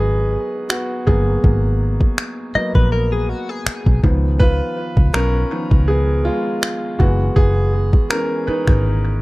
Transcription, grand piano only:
0, 0, Header, 1, 2, 480
1, 0, Start_track
1, 0, Key_signature, 5, "minor"
1, 0, Tempo, 740741
1, 933, Time_signature, 4, 2, 24, 8
1, 5973, End_track
2, 0, Start_track
2, 0, Title_t, "Grand piano"
2, 0, Program_c, 0, 0
2, 0, Control_c, 0, 64, 127
2, 0, Note_on_c, 0, 54, 51
2, 0, Note_on_c, 0, 59, 63
2, 0, Note_on_c, 0, 63, 69
2, 0, Note_on_c, 0, 66, 80
2, 0, Note_on_c, 0, 68, 83
2, 0, Note_on_c, 0, 70, 49
2, 0, Note_on_c, 0, 71, 91
2, 0, Note_on_c, 0, 75, 108
2, 428, Note_off_c, 0, 54, 0
2, 430, Note_off_c, 0, 70, 0
2, 432, Note_off_c, 0, 59, 0
2, 451, Note_off_c, 0, 66, 0
2, 451, Note_on_c, 0, 66, 74
2, 465, Note_on_c, 0, 59, 56
2, 466, Note_off_c, 0, 68, 0
2, 505, Note_off_c, 0, 66, 0
2, 517, Note_off_c, 0, 59, 0
2, 691, Note_on_c, 0, 68, 82
2, 696, Note_on_c, 0, 54, 47
2, 698, Note_on_c, 0, 58, 42
2, 701, Note_on_c, 0, 59, 58
2, 911, Note_off_c, 0, 54, 0
2, 912, Note_off_c, 0, 58, 0
2, 1146, Note_off_c, 0, 68, 0
2, 1152, Note_off_c, 0, 59, 0
2, 1654, Note_on_c, 0, 54, 54
2, 1659, Note_on_c, 0, 58, 47
2, 1663, Note_on_c, 0, 59, 60
2, 2588, Note_off_c, 0, 54, 0
2, 2590, Note_off_c, 0, 58, 0
2, 2592, Note_off_c, 0, 59, 0
2, 2614, Note_on_c, 0, 51, 52
2, 2618, Note_on_c, 0, 53, 47
2, 2620, Control_c, 0, 64, 0
2, 2622, Note_off_c, 0, 63, 0
2, 2622, Note_off_c, 0, 71, 0
2, 2622, Note_off_c, 0, 75, 0
2, 2622, Note_on_c, 0, 59, 57
2, 2746, Control_c, 0, 64, 127
2, 2848, Note_on_c, 0, 71, 106
2, 2862, Note_on_c, 0, 65, 81
2, 2940, Note_off_c, 0, 51, 0
2, 2942, Note_off_c, 0, 53, 0
2, 2944, Note_off_c, 0, 59, 0
2, 3312, Note_off_c, 0, 65, 0
2, 3329, Note_on_c, 0, 70, 100
2, 3343, Note_on_c, 0, 61, 76
2, 3345, Note_off_c, 0, 71, 0
2, 3575, Note_on_c, 0, 51, 48
2, 3577, Note_on_c, 0, 53, 41
2, 3580, Note_on_c, 0, 59, 51
2, 3790, Note_off_c, 0, 51, 0
2, 3791, Note_off_c, 0, 53, 0
2, 3792, Note_off_c, 0, 61, 0
2, 3793, Note_off_c, 0, 59, 0
2, 3809, Note_on_c, 0, 68, 90
2, 3822, Note_on_c, 0, 59, 68
2, 3825, Note_off_c, 0, 70, 0
2, 4041, Note_off_c, 0, 59, 0
2, 4049, Note_on_c, 0, 65, 88
2, 4058, Note_off_c, 0, 68, 0
2, 4063, Note_on_c, 0, 56, 69
2, 4505, Note_off_c, 0, 65, 0
2, 4512, Note_off_c, 0, 56, 0
2, 4529, Note_on_c, 0, 66, 78
2, 4532, Note_on_c, 0, 52, 51
2, 4536, Note_on_c, 0, 56, 48
2, 4540, Note_on_c, 0, 59, 60
2, 4541, Control_c, 0, 64, 0
2, 4639, Control_c, 0, 64, 127
2, 4761, Note_off_c, 0, 59, 0
2, 4769, Note_on_c, 0, 68, 98
2, 4778, Note_off_c, 0, 66, 0
2, 4781, Note_on_c, 0, 59, 70
2, 4859, Note_off_c, 0, 52, 0
2, 4861, Note_off_c, 0, 56, 0
2, 5231, Note_off_c, 0, 59, 0
2, 5250, Note_on_c, 0, 70, 95
2, 5255, Note_on_c, 0, 52, 50
2, 5257, Note_on_c, 0, 56, 44
2, 5260, Note_on_c, 0, 59, 52
2, 5263, Note_on_c, 0, 61, 66
2, 5265, Note_off_c, 0, 68, 0
2, 5470, Note_off_c, 0, 52, 0
2, 5471, Note_off_c, 0, 56, 0
2, 5473, Note_off_c, 0, 59, 0
2, 5481, Note_off_c, 0, 61, 0
2, 5489, Note_on_c, 0, 71, 82
2, 5499, Note_off_c, 0, 70, 0
2, 5502, Note_on_c, 0, 63, 69
2, 5973, Note_off_c, 0, 63, 0
2, 5973, Note_off_c, 0, 71, 0
2, 5973, End_track
0, 0, End_of_file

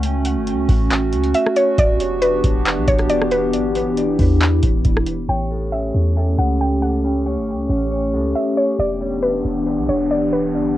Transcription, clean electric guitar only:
0, 0, Header, 1, 2, 480
1, 0, Start_track
1, 0, Tempo, 437956
1, 34, Time_signature, 4, 2, 24, 8
1, 11811, End_track
2, 0, Start_track
2, 0, Title_t, "Clean electric guitar"
2, 0, Program_c, 0, 27
2, 5792, Note_on_c, 0, 73, 82
2, 6035, Note_on_c, 0, 69, 74
2, 6275, Note_on_c, 0, 61, 69
2, 6746, Note_off_c, 0, 69, 0
2, 6759, Note_on_c, 0, 69, 76
2, 6983, Note_off_c, 0, 61, 0
2, 6996, Note_on_c, 0, 61, 68
2, 7233, Note_off_c, 0, 73, 0
2, 7458, Note_off_c, 0, 69, 0
2, 7471, Note_on_c, 0, 69, 75
2, 7702, Note_off_c, 0, 61, 0
2, 7715, Note_on_c, 0, 61, 72
2, 7955, Note_on_c, 0, 73, 92
2, 8423, Note_off_c, 0, 61, 0
2, 8436, Note_on_c, 0, 61, 78
2, 8659, Note_off_c, 0, 73, 0
2, 8672, Note_on_c, 0, 73, 95
2, 8904, Note_off_c, 0, 69, 0
2, 8917, Note_on_c, 0, 69, 76
2, 9141, Note_off_c, 0, 61, 0
2, 9154, Note_on_c, 0, 61, 69
2, 9382, Note_off_c, 0, 73, 0
2, 9395, Note_on_c, 0, 73, 102
2, 9632, Note_off_c, 0, 73, 0
2, 9634, Note_off_c, 0, 61, 0
2, 9636, Note_off_c, 0, 69, 0
2, 9636, Note_on_c, 0, 74, 88
2, 9871, Note_on_c, 0, 67, 77
2, 10116, Note_on_c, 0, 62, 76
2, 10578, Note_off_c, 0, 67, 0
2, 10591, Note_on_c, 0, 67, 77
2, 10822, Note_off_c, 0, 62, 0
2, 10835, Note_on_c, 0, 62, 70
2, 11075, Note_off_c, 0, 74, 0
2, 11296, Note_off_c, 0, 67, 0
2, 11309, Note_on_c, 0, 67, 83
2, 11538, Note_off_c, 0, 62, 0
2, 11551, Note_on_c, 0, 62, 69
2, 11811, Note_off_c, 0, 62, 0
2, 11811, Note_off_c, 0, 67, 0
2, 11811, End_track
0, 0, End_of_file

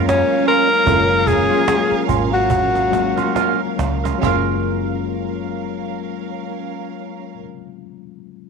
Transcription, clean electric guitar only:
0, 0, Header, 1, 3, 480
1, 0, Start_track
1, 0, Key_signature, 6, "major"
1, 0, Tempo, 798935
1, 519, Time_signature, 4, 2, 24, 8
1, 1005, Tempo, 839161
1, 1965, Tempo, 890208
1, 4741, End_track
2, 0, Start_track
2, 0, Title_t, "Clean electric guitar"
2, 0, Program_c, 0, 27
2, 279, Note_on_c, 0, 61, 69
2, 286, Note_on_c, 0, 65, 81
2, 292, Note_on_c, 0, 70, 77
2, 411, Note_off_c, 0, 70, 0
2, 414, Note_off_c, 0, 61, 0
2, 418, Note_off_c, 0, 65, 0
2, 518, Note_on_c, 0, 61, 72
2, 523, Note_on_c, 0, 65, 76
2, 530, Note_on_c, 0, 70, 80
2, 651, Note_off_c, 0, 70, 0
2, 659, Note_off_c, 0, 65, 0
2, 663, Note_off_c, 0, 61, 0
2, 898, Note_on_c, 0, 73, 67
2, 904, Note_on_c, 0, 65, 55
2, 909, Note_on_c, 0, 61, 48
2, 978, Note_off_c, 0, 73, 0
2, 981, Note_off_c, 0, 65, 0
2, 983, Note_off_c, 0, 61, 0
2, 1236, Note_on_c, 0, 61, 61
2, 1243, Note_on_c, 0, 65, 71
2, 1249, Note_on_c, 0, 70, 66
2, 1369, Note_off_c, 0, 70, 0
2, 1371, Note_off_c, 0, 61, 0
2, 1375, Note_off_c, 0, 65, 0
2, 1858, Note_on_c, 0, 70, 73
2, 1865, Note_on_c, 0, 65, 66
2, 1870, Note_on_c, 0, 61, 58
2, 1955, Note_off_c, 0, 61, 0
2, 1960, Note_off_c, 0, 70, 0
2, 1961, Note_off_c, 0, 65, 0
2, 1962, Note_on_c, 0, 61, 74
2, 1968, Note_on_c, 0, 65, 79
2, 1973, Note_on_c, 0, 70, 81
2, 2095, Note_off_c, 0, 61, 0
2, 2098, Note_off_c, 0, 65, 0
2, 2100, Note_off_c, 0, 70, 0
2, 2335, Note_on_c, 0, 70, 56
2, 2341, Note_on_c, 0, 65, 51
2, 2346, Note_on_c, 0, 61, 47
2, 2413, Note_off_c, 0, 70, 0
2, 2415, Note_off_c, 0, 65, 0
2, 2418, Note_off_c, 0, 61, 0
2, 2432, Note_on_c, 0, 61, 71
2, 2446, Note_on_c, 0, 65, 70
2, 2458, Note_on_c, 0, 70, 82
2, 4319, Note_off_c, 0, 61, 0
2, 4333, Note_off_c, 0, 65, 0
2, 4345, Note_off_c, 0, 70, 0
2, 4741, End_track
3, 0, Start_track
3, 0, Title_t, "Muted clean electric guitar strokes"
3, 181, Note_on_c, 9, 29, 45
3, 241, Note_off_c, 9, 29, 0
3, 418, Note_on_c, 9, 29, 42
3, 478, Note_off_c, 9, 29, 0
3, 759, Note_on_c, 9, 29, 39
3, 819, Note_off_c, 9, 29, 0
3, 1140, Note_on_c, 9, 29, 40
3, 1197, Note_off_c, 9, 29, 0
3, 1376, Note_on_c, 9, 29, 42
3, 1433, Note_off_c, 9, 29, 0
3, 1477, Note_on_c, 9, 29, 41
3, 1534, Note_off_c, 9, 29, 0
3, 1617, Note_on_c, 9, 29, 43
3, 1675, Note_off_c, 9, 29, 0
3, 2199, Note_on_c, 9, 29, 38
3, 2253, Note_off_c, 9, 29, 0
3, 4741, End_track
0, 0, End_of_file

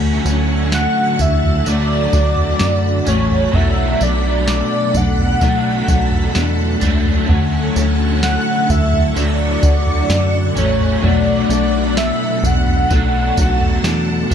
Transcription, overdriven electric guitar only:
0, 0, Header, 1, 2, 480
1, 0, Start_track
1, 0, Key_signature, 2, "minor"
1, 0, Tempo, 937500
1, 1809, Time_signature, 4, 2, 24, 8
1, 7344, End_track
2, 0, Start_track
2, 0, Title_t, "Overdriven electric guitar"
2, 0, Program_c, 0, 29
2, 0, Note_on_c, 0, 50, 85
2, 0, Note_on_c, 0, 54, 86
2, 0, Note_on_c, 0, 57, 93
2, 0, Note_on_c, 0, 61, 99
2, 840, Note_off_c, 0, 50, 0
2, 842, Note_on_c, 0, 50, 56
2, 852, Note_off_c, 0, 54, 0
2, 854, Note_on_c, 0, 54, 65
2, 862, Note_off_c, 0, 57, 0
2, 864, Note_on_c, 0, 57, 69
2, 866, Note_off_c, 0, 61, 0
2, 1562, Note_on_c, 0, 61, 60
2, 1577, Note_off_c, 0, 50, 0
2, 1577, Note_off_c, 0, 57, 0
2, 1579, Note_on_c, 0, 57, 49
2, 1591, Note_off_c, 0, 54, 0
2, 1593, Note_on_c, 0, 54, 42
2, 1798, Note_on_c, 0, 47, 80
2, 1806, Note_off_c, 0, 61, 0
2, 1810, Note_off_c, 0, 54, 0
2, 1814, Note_off_c, 0, 57, 0
2, 1817, Note_on_c, 0, 54, 76
2, 1830, Note_on_c, 0, 57, 83
2, 1842, Note_on_c, 0, 62, 83
2, 2761, Note_off_c, 0, 47, 0
2, 2767, Note_on_c, 0, 47, 57
2, 2776, Note_off_c, 0, 54, 0
2, 2778, Note_on_c, 0, 54, 65
2, 2782, Note_off_c, 0, 57, 0
2, 2788, Note_on_c, 0, 57, 72
2, 2793, Note_off_c, 0, 62, 0
2, 2795, Note_on_c, 0, 62, 68
2, 3480, Note_off_c, 0, 62, 0
2, 3482, Note_on_c, 0, 62, 59
2, 3488, Note_off_c, 0, 47, 0
2, 3497, Note_off_c, 0, 57, 0
2, 3499, Note_on_c, 0, 57, 58
2, 3510, Note_off_c, 0, 54, 0
2, 3512, Note_on_c, 0, 54, 46
2, 3714, Note_on_c, 0, 50, 83
2, 3726, Note_off_c, 0, 54, 0
2, 3726, Note_off_c, 0, 62, 0
2, 3732, Note_on_c, 0, 54, 95
2, 3734, Note_off_c, 0, 57, 0
2, 3745, Note_on_c, 0, 57, 94
2, 3761, Note_on_c, 0, 61, 90
2, 4680, Note_off_c, 0, 50, 0
2, 4682, Note_on_c, 0, 50, 59
2, 4692, Note_off_c, 0, 54, 0
2, 4694, Note_on_c, 0, 54, 72
2, 4702, Note_off_c, 0, 57, 0
2, 4704, Note_on_c, 0, 57, 65
2, 4705, Note_off_c, 0, 61, 0
2, 5402, Note_on_c, 0, 61, 60
2, 5415, Note_off_c, 0, 57, 0
2, 5417, Note_off_c, 0, 50, 0
2, 5417, Note_on_c, 0, 57, 52
2, 5427, Note_off_c, 0, 54, 0
2, 5429, Note_on_c, 0, 54, 48
2, 5633, Note_on_c, 0, 47, 85
2, 5643, Note_off_c, 0, 54, 0
2, 5646, Note_off_c, 0, 61, 0
2, 5650, Note_on_c, 0, 54, 85
2, 5654, Note_off_c, 0, 57, 0
2, 5663, Note_on_c, 0, 57, 87
2, 5677, Note_on_c, 0, 62, 92
2, 6594, Note_off_c, 0, 47, 0
2, 6600, Note_on_c, 0, 47, 63
2, 6610, Note_off_c, 0, 54, 0
2, 6612, Note_on_c, 0, 54, 67
2, 6616, Note_off_c, 0, 57, 0
2, 6619, Note_on_c, 0, 57, 64
2, 6627, Note_off_c, 0, 62, 0
2, 6629, Note_on_c, 0, 62, 72
2, 7317, Note_off_c, 0, 62, 0
2, 7319, Note_on_c, 0, 62, 60
2, 7325, Note_off_c, 0, 47, 0
2, 7333, Note_off_c, 0, 57, 0
2, 7344, Note_off_c, 0, 54, 0
2, 7344, Note_off_c, 0, 62, 0
2, 7344, End_track
0, 0, End_of_file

